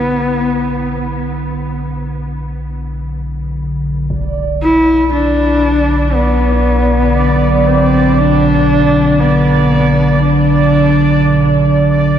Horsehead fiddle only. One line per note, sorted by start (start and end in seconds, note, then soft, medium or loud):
0.00 1.06 B3 medium
4.63 5.09 E4 loud
5.13 6.16 D4 loud
6.14 7.68 B3 medium
7.66 8.20 C4 medium
8.18 9.21 D4 loud
9.19 10.21 B3 medium
10.24 11.71 D4 medium